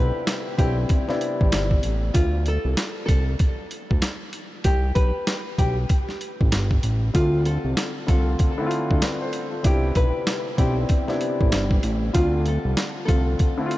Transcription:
Already playing: analog synth bass B1, grand piano C3 B3 D4 E4 F4, nylon-string guitar B4
0.27 snare, closed hi-hat
0.57 analog synth bass B1, grand piano B3 C4 D4 E4, nylon-string guitar G4, kick, closed hi-hat
0.89 kick, closed hi-hat
1.08 grand piano C3 B3 D4 E4, snare
1.21 closed hi-hat
1.41 analog synth bass A1, kick
1.52 analog synth bass G1, snare, closed hi-hat
1.71 kick
1.83 analog synth bass A1, closed hi-hat
2.14 analog synth bass D2, nylon-string guitar F4, kick, closed hi-hat
2.46 nylon-string guitar A4, closed hi-hat
2.65 analog synth bass C2
2.77 snare, closed hi-hat
3.06 analog synth bass C2, nylon-string guitar A4, kick, closed hi-hat
3.39 kick, closed hi-hat
3.71 closed hi-hat
3.91 analog synth bass D2, kick
4.02 snare, closed hi-hat
4.33 closed hi-hat
4.64 analog synth bass C2, nylon-string guitar G4, kick, closed hi-hat
4.95 analog synth bass B1, nylon-string guitar B4, kick, closed hi-hat
5.27 snare, closed hi-hat
5.58 analog synth bass B1, nylon-string guitar G4, kick, closed hi-hat
5.89 kick, closed hi-hat
6.09 snare
6.21 closed hi-hat
6.41 analog synth bass A1, kick
6.52 analog synth bass G1, snare, closed hi-hat
6.71 kick
6.83 analog synth bass A1, closed hi-hat
7.14 analog synth bass D2, grand piano D3 A3 C4 F4, nylon-string guitar F4, kick, closed hi-hat
7.45 nylon-string guitar A4, closed hi-hat
7.65 analog synth bass C2
7.77 snare, closed hi-hat
8.07 analog synth bass C2, grand piano D3 A3 C4 F4, nylon-string guitar A4, kick, closed hi-hat
8.39 kick, closed hi-hat
8.58 grand piano D3 A3 C4 E4
8.66 grand piano F4
8.71 closed hi-hat
8.91 analog synth bass D2, kick
9.02 grand piano B4 D5, snare, closed hi-hat
9.22 grand piano A4 C5
9.33 closed hi-hat
9.51 grand piano F4 A4
9.63 analog synth bass C2, grand piano C3 B3 D4 E4, nylon-string guitar G4, kick, closed hi-hat
9.95 analog synth bass B1, nylon-string guitar B4, kick, closed hi-hat
10.27 snare, closed hi-hat
10.57 analog synth bass B1, grand piano B3 C4 D4 E4, nylon-string guitar G4, kick, closed hi-hat
10.89 kick, closed hi-hat
11.08 grand piano C3 B3 D4 E4, snare
11.21 closed hi-hat
11.41 analog synth bass A1, kick
11.52 analog synth bass G1, snare, closed hi-hat
11.71 kick
11.83 analog synth bass A1, closed hi-hat
12.13 analog synth bass D2, grand piano D3 A3 C4 F4, nylon-string guitar F4, kick, closed hi-hat
12.46 nylon-string guitar A4, closed hi-hat
12.65 analog synth bass C2
12.77 snare, closed hi-hat
13.05 analog synth bass C2, grand piano D3 A3 C4 F4, nylon-string guitar A4, kick, closed hi-hat
13.39 kick, closed hi-hat
13.58 grand piano D3 A3 C4 E4
13.66 grand piano F4
13.71 closed hi-hat

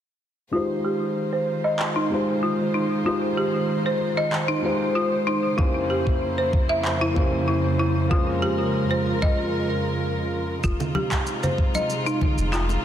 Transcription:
0.51 string section D#3 G#3 F4 C5, felt piano G#3 D#4 F4 G4 C5, marimba F4
0.85 marimba G4
1.33 marimba C5
1.64 marimba D#5
1.79 clap
1.96 marimba D#4
2.09 felt piano G#3 D#4 F4 G4
2.13 felt piano C5
2.43 marimba F4
2.74 marimba D#4
3.04 felt piano G#3 D#4 F4 G4, marimba F4
3.08 felt piano C5
3.37 marimba G4
3.86 marimba C5
4.17 marimba D#5
4.33 clap
4.48 marimba D#4
4.61 felt piano G#3 D#4 F4 G4 C5
4.95 marimba F4
5.27 marimba D#4
5.57 string section F2 C#3 A#3 E4, felt piano A#3 C#4 E4 G4 C5, marimba E4, kick
5.90 marimba G4
6.07 kick
6.38 marimba C5
6.53 kick
6.69 marimba E5
6.85 clap
7.01 marimba E4
7.14 felt piano A#3 C#4 E4 G4, kick
7.18 felt piano C5
7.48 marimba E4
7.79 marimba E4
8.09 string section G#3 F4 A#4, felt piano G#3 A#3 C#4 F4, marimba F4, kick
8.13 felt piano C5
8.42 marimba G4
8.91 marimba C5
9.22 marimba D#5, kick
10.64 sub bass F1, string section C3 G#3 D#4 F4, marimba F4, kick, shaker
10.80 high bongo, low conga, shaker
10.95 marimba G4, high conga
11.12 kick, clap, shaker
11.27 shaker
11.43 marimba C5, low conga, shaker
11.58 kick
11.75 marimba D#5, high conga, shaker
11.90 shaker
12.06 marimba D#4, shaker
12.21 kick, high conga, low conga
12.38 sub bass F1, shaker
12.53 marimba F4, clap, shaker
12.69 high bongo, shaker

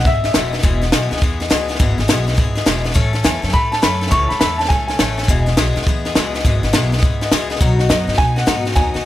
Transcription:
0.05 upright bass G#1, steel-string acoustic guitar E3 G#3 B3 G#4, upright piano E5, kick, snare
0.24 steel-string acoustic guitar E3 G#3 B3 G#4, upright piano E5, snare
0.34 upright bass E1, steel-string acoustic guitar E2 B2 E3 G#3 B3 G#4, snare, hi-hat pedal
0.53 steel-string acoustic guitar E3 G#3 B3 G#4, snare
0.59 snare
0.63 upright bass E1, steel-string acoustic guitar E2 B2 E3 G#3 B3 G#4, kick, snare
0.81 steel-string acoustic guitar E3 G#3 B3 G#4, snare
0.92 upright bass B1, steel-string acoustic guitar E2 B2 E3 G#3 B3 G#4, snare, hi-hat pedal
1.11 upright bass C#2, steel-string acoustic guitar E3 G#3 B3 G#4, snare
1.17 snare
1.22 upright bass E2, steel-string acoustic guitar E3 G#3 B3 G#4, kick, snare
1.40 steel-string acoustic guitar E3 G#3 B3 G#4, snare
1.50 upright bass C#2, steel-string acoustic guitar E2 B2 E3 G#3 B3 G#4, snare, hi-hat pedal
1.68 steel-string acoustic guitar E3 G#3 B3 G#4, snare
1.75 snare
1.79 upright bass G#1, steel-string acoustic guitar E2 B2 E3 G#3 B3 G#4, kick, snare
1.98 upright bass G#1, steel-string acoustic guitar E3 G#3 B3 G#4, snare
2.08 upright bass B1, steel-string acoustic guitar E2 B2 E3 G#3 B3 G#4, snare, hi-hat pedal
2.27 steel-string acoustic guitar E3 G#3 B3 G#4, snare
2.33 steel-string acoustic guitar E3, snare
2.38 upright bass G#1, steel-string acoustic guitar G#3 B3 G#4, kick, snare
2.55 steel-string acoustic guitar E3 G#3 B3 G#4, snare
2.66 upright bass E1, steel-string acoustic guitar E2 B2 E3 G#3 B3 G#4, snare, hi-hat pedal
2.84 steel-string acoustic guitar E3 G#3 B3 G#4, snare
2.90 steel-string acoustic guitar A2, snare
2.95 upright bass A1, steel-string acoustic guitar E3 A3 C#4 A4, kick, snare
3.13 steel-string acoustic guitar A3 C#4 A4, snare
3.24 upright bass E2, steel-string acoustic guitar A2 E3 A3 C#4 A4, upright piano G#5, snare, hi-hat pedal
3.42 upright bass F#2, steel-string acoustic guitar A3 C#4 A4, snare
3.49 snare
3.53 upright bass A2, steel-string acoustic guitar E3 A3 C#4 A4, upright piano B5, kick, snare
3.72 steel-string acoustic guitar A3 C#4 A4, upright piano A5, snare
3.82 upright bass F#2, steel-string acoustic guitar A2 E3 A3 C#4 A4, upright piano B5, snare, hi-hat pedal
4.01 steel-string acoustic guitar A3 C#4 A4, snare
4.07 upright piano C#6, snare
4.11 upright bass C#2, steel-string acoustic guitar A2 E3 A3 C#4 A4, kick, snare
4.29 upright bass C#2, steel-string acoustic guitar A3 C#4 A4, upright piano B5, snare
4.40 upright bass E2, steel-string acoustic guitar A2 E3 A3 C#4 A4, upright piano B5, snare, hi-hat pedal
4.58 steel-string acoustic guitar A3 C#4 A4, upright piano A5, snare
4.65 upright piano G#5, snare
4.70 upright bass C#2, steel-string acoustic guitar E3 A3 C#4 A4, kick, snare
4.88 steel-string acoustic guitar A3 C#4 A4, upright piano G#5, snare
4.99 upright bass A1, steel-string acoustic guitar A2 E3 A3 C#4 A4, snare, hi-hat pedal
5.18 steel-string acoustic guitar A3 C#4 A4, snare
5.23 snare
5.28 upright bass E1, steel-string acoustic guitar E2 B2 E3 G#3 B3 G#4, kick, snare
5.46 steel-string acoustic guitar E3 G#3 B3 G#4, snare
5.57 upright bass B1, steel-string acoustic guitar E2 B2 E3 G#3 B3 G#4, snare, hi-hat pedal
5.76 upright bass C#2, steel-string acoustic guitar E3 G#3 B3 G#4, snare
5.82 snare
5.87 upright bass E2, steel-string acoustic guitar E3 G#3 B3 G#4, kick, snare
6.05 steel-string acoustic guitar E3 G#3 B3 G#4, snare
6.15 upright bass C#2, steel-string acoustic guitar E2 B2 E3 G#3 B3 G#4, snare, hi-hat pedal
6.34 steel-string acoustic guitar E3 G#3 B3 G#4, snare
6.39 snare
6.45 upright bass G#1, steel-string acoustic guitar E2 B2 E3 G#3 B3 G#4, kick, snare
6.63 upright bass G#1, steel-string acoustic guitar E3 G#3 B3 G#4, snare
6.73 upright bass B1, steel-string acoustic guitar E2 B2 E3 G#3 B3 G#4, snare, hi-hat pedal
6.92 steel-string acoustic guitar E3 G#3 B3 G#4, snare
6.98 snare
7.02 upright bass G#1, steel-string acoustic guitar E3 G#3 B3 G#4, kick, snare
7.21 steel-string acoustic guitar E3 G#3 B3 G#4, snare
7.32 upright bass C#2, steel-string acoustic guitar E2 B2 E3 G#3 B3 G#4, snare, hi-hat pedal
7.50 steel-string acoustic guitar E3 G#3 B3 G#4, snare
7.56 snare
7.60 upright bass B1, steel-string acoustic guitar B2 F#3 B3 D#4 F#4, kick, snare
7.79 steel-string acoustic guitar B3 D#4 F#4, snare
7.89 steel-string acoustic guitar B2 F#3 B3 D#4 F#4, upright piano D#5, snare, hi-hat pedal
8.07 upright bass G#2, steel-string acoustic guitar B3 D#4 F#4, snare
8.14 steel-string acoustic guitar F#3, snare
8.18 upright bass B2, steel-string acoustic guitar B3 D#4 F#4, upright piano G#5, kick, snare
8.36 steel-string acoustic guitar B3 D#4 F#4, upright piano F#5, snare
8.46 steel-string acoustic guitar B2 F#3 B3 D#4 F#4, snare, hi-hat pedal
8.65 steel-string acoustic guitar B3 D#4 F#4, snare
8.71 snare
8.75 upright bass D#2, steel-string acoustic guitar B2 F#3 B3 D#4 F#4, upright piano G#5, kick, snare
8.94 upright bass D#2, steel-string acoustic guitar B3 D#4 F#4, snare

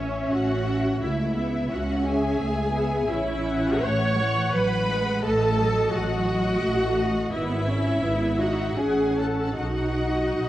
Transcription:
Already playing: double bass section A1, viola section C#4, cello section C#4, violin section C#5 E5
0.31 double bass section A1, viola section F#4, violin section F#5
0.65 violin section E5
1.00 double bass section C#2, cello section A3, viola section E4, violin section E5
1.35 cello section B3, violin section E5
1.70 double bass section C#2, cello section C#4, viola section F#4, violin section F#5
2.04 viola section G#4, violin section E5 G#5
2.40 double bass section C#2, cello section A3
2.73 cello section B3, violin section E5
3.08 double bass section A1, cello section C#4, viola section E4, violin section E5
3.45 violin section F#5
3.82 double bass section A1, cello section A3, viola section C#5, violin section C#6
4.17 cello section E3, violin section F#5
4.53 double bass section A1, cello section F#3, viola section B4, violin section B5
4.87 cello section G#3, violin section F#5
5.23 double bass section A1, cello section A3, viola section A4, violin section D#5 A5
5.59 cello section F#3, violin section D#5
5.93 double bass section A1, viola section F#4, violin section F#5
6.27 violin section D#5
6.62 double bass section A1, cello section A3
6.97 violin section D#5
7.32 double bass section G#1, cello section B3, viola section E4, violin section E5
7.68 cello section C#4, violin section E5
8.03 double bass section G#1, cello section B3
8.40 cello section D#4, viola section F#4, violin section E5 F#5
8.78 double bass section A1, cello section C#4, viola section G#4, violin section F#5 G#5
9.17 viola section A4, violin section F#5 A5
9.57 double bass section B1, cello section D#4, viola section F#4, violin section F#5
9.98 violin section D#5
10.37 double bass section B1

